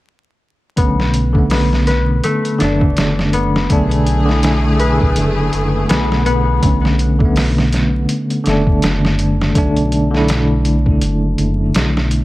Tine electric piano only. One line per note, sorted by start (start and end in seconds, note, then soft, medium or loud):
0.76 1.29 D3 medium
0.76 1.30 A3 medium
0.76 1.31 C#4 medium
1.33 2.55 D3 medium
1.33 2.57 A3 medium
1.39 2.58 B3 medium
2.58 3.65 D3 medium
2.58 3.67 A3 medium
2.64 3.68 D4 medium
3.69 4.22 D3 medium
3.69 4.23 A3 medium
3.69 4.24 D4 medium
4.25 6.58 D3 medium
4.25 6.59 A3 medium
4.32 6.61 E4 medium
6.63 7.15 D3 medium
6.63 7.16 A3 medium
6.63 7.17 C#4 medium
7.19 8.41 D3 medium
7.19 8.43 A3 medium
7.25 8.44 B3 medium
8.44 9.51 D3 medium
8.44 9.52 A3 medium
8.50 9.54 D4 loud
9.55 10.08 D3 medium
9.55 10.09 A3 medium
9.55 10.09 D4 medium
10.11 12.24 D3 medium
10.11 12.24 A3 medium
10.17 12.24 E4 loud